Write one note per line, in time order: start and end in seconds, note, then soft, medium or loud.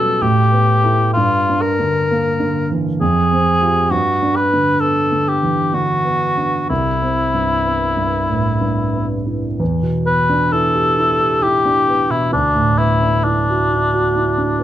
0.00 0.18 B2 medium
0.00 0.24 F#3 soft
0.00 0.22 G3 soft
0.00 0.23 B3 soft
0.00 0.24 C#4 soft
0.00 0.23 A4 medium
0.22 1.12 A2 medium
0.22 1.12 G4 medium
0.52 1.02 B3 soft
0.84 1.12 E4 soft
0.84 1.12 A4 soft
1.13 2.98 G2 soft
1.13 1.63 F4 medium
1.50 1.98 D4 soft
1.61 2.72 A#4 medium
1.80 2.28 D3 soft
2.11 2.59 A#3 soft
2.40 2.89 D3 soft
2.72 3.01 E3 soft
3.01 3.88 F2 medium
3.01 3.92 G#4 medium
3.32 3.79 C4 soft
3.61 3.88 F4 soft
3.61 3.88 G4 soft
3.91 6.66 G2 soft
3.91 4.37 F#4 medium
4.22 4.70 D4 soft
4.36 4.82 B4 medium
4.53 5.01 D3 soft
4.80 5.31 B3 soft
4.80 5.29 A4 medium
5.12 5.62 D3 soft
5.28 5.76 G4 medium
5.43 5.74 E3 soft
5.74 6.24 D3 soft
5.74 6.69 F#4 medium
6.05 6.56 B3 soft
6.37 6.70 D4 soft
6.69 9.56 C2 soft
6.69 9.07 E4 medium
7.02 7.53 C4 soft
7.34 7.85 G2 soft
7.65 8.16 B3 soft
7.97 8.49 G2 soft
8.29 8.62 A2 soft
8.61 9.14 G2 soft
8.94 9.47 B3 soft
9.26 9.59 E4 soft
9.60 12.28 E2 soft
9.82 10.20 B2 soft
10.05 10.43 B3 soft
10.05 10.54 B4 medium
10.29 10.66 D4 soft
10.52 10.88 E4 soft
10.52 11.44 A4 medium
10.74 11.11 G4 soft
10.98 11.34 E4 soft
11.20 11.56 G4 soft
11.42 11.79 E4 soft
11.42 12.12 G4 medium
11.65 12.01 D4 soft
11.88 12.24 B3 soft
12.10 12.32 B2 soft
12.10 12.32 E4 medium
12.33 14.63 D2 soft
12.33 12.80 D4 medium
12.55 12.92 A2 soft
12.78 13.15 B3 soft
12.78 13.25 E4 medium
13.03 13.39 D4 soft
13.24 14.63 D4 medium
13.24 13.61 E4 soft
13.50 13.85 F#4 soft
13.71 14.06 E4 soft
13.94 14.28 F#4 soft
14.16 14.50 E4 soft
14.38 14.63 D4 soft
14.59 14.63 B3 soft